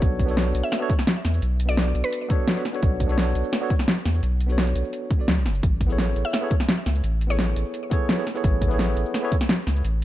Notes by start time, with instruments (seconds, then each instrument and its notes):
Already playing: tine electric piano B3 D4 F#4 A4 C#5
0.02 sub bass B1, kick, closed hi-hat, cabasa
0.19 kick, closed hi-hat
0.26 tine electric piano B3 D4 F#4, cabasa
0.30 tine electric piano A4 C#5
0.37 snare, closed hi-hat, cabasa
0.55 sub bass B1, closed hi-hat
0.63 synth pluck E5, cabasa
0.72 synth pluck E5, snare, closed hi-hat, cabasa
0.79 tine electric piano B3 D4 F#4 A4 C#5
0.90 kick, closed hi-hat
0.99 snare
1.07 snare, closed hi-hat, cabasa
1.25 sub bass E2, snare, open hi-hat
1.34 cabasa
1.42 sub bass B1, closed hi-hat, cabasa
1.60 closed hi-hat
1.66 tine electric piano B3 D4 F#4, synth pluck D5, cabasa
1.70 tine electric piano A4 D5
1.77 snare, closed hi-hat, cabasa
1.95 sub bass B1, closed hi-hat
2.04 synth pluck B4, cabasa
2.13 closed hi-hat, cabasa
2.28 tine electric piano B3 D4 F#4 A4 C#5, kick, closed hi-hat
2.48 snare, closed hi-hat, cabasa
2.55 tine electric piano B3 D4 F#4 A4 C#5
2.65 snare, open hi-hat
2.73 tine electric piano B3 D4 F#4 A4 C#5, cabasa
2.83 sub bass B1, kick, closed hi-hat, cabasa
3.00 kick, closed hi-hat
3.06 tine electric piano B3 D4 F#4, cabasa
3.11 tine electric piano A4 C#5
3.18 snare, closed hi-hat, cabasa
3.35 sub bass B1, closed hi-hat
3.44 cabasa
3.53 snare, closed hi-hat, cabasa
3.60 tine electric piano B3 D4 F#4 A4 C#5
3.70 kick, closed hi-hat
3.79 snare
3.88 snare, closed hi-hat, cabasa
4.05 sub bass E2, snare, open hi-hat
4.14 cabasa
4.23 sub bass B1, closed hi-hat, cabasa
4.40 closed hi-hat
4.47 tine electric piano B3 D4 F#4, cabasa
4.51 tine electric piano A4 C#5
4.58 snare, closed hi-hat, cabasa
4.67 closed hi-hat
4.75 sub bass B1, closed hi-hat
4.85 cabasa
4.93 closed hi-hat, cabasa
5.11 kick, closed hi-hat
5.18 tine electric piano B3 D4 F#4 A4 D5
5.28 sub bass D2, snare, closed hi-hat, cabasa
5.37 sub bass B1
5.46 sub bass F#1, snare, open hi-hat
5.55 cabasa
5.63 sub bass A1, kick, closed hi-hat, cabasa
5.81 kick, closed hi-hat
5.87 tine electric piano B3 E4 G#4, cabasa
5.91 tine electric piano A4 C#5
5.99 snare, closed hi-hat, cabasa
6.16 sub bass A1, closed hi-hat
6.25 synth pluck E5, cabasa
6.33 synth pluck E5, snare, closed hi-hat, cabasa
6.41 tine electric piano B3 E4 G#4 A4 C#5
6.51 kick, closed hi-hat
6.60 snare
6.69 snare, closed hi-hat, cabasa
6.86 sub bass C#2, snare, open hi-hat
6.95 cabasa
7.04 sub bass A1, closed hi-hat, cabasa
7.21 closed hi-hat
7.27 tine electric piano B3 E4 G#4, synth pluck C#5, cabasa
7.32 tine electric piano A4 C#5
7.39 snare, closed hi-hat, cabasa
7.56 sub bass A1, closed hi-hat
7.65 cabasa
7.74 closed hi-hat, cabasa
7.90 tine electric piano B3 E4 G#4 A4 C#5, kick, closed hi-hat
8.09 snare, closed hi-hat, cabasa
8.17 tine electric piano B3 E4 G#4 A4 C#5
8.27 snare, open hi-hat
8.34 tine electric piano B3 E4 G#4 A4 C#5, cabasa
8.44 sub bass A1, kick, closed hi-hat, cabasa
8.62 kick, closed hi-hat
8.68 tine electric piano B3 E4 G#4, cabasa
8.72 tine electric piano A4 C#5
8.79 snare, closed hi-hat, cabasa
8.96 sub bass A1, closed hi-hat
9.06 cabasa
9.14 snare, closed hi-hat, cabasa
9.22 tine electric piano B3 E4 G#4 A4 C#5
9.32 kick, closed hi-hat
9.41 snare
9.49 snare, closed hi-hat, cabasa
9.67 sub bass C#2, snare, open hi-hat
9.76 cabasa
9.84 sub bass A1, closed hi-hat, cabasa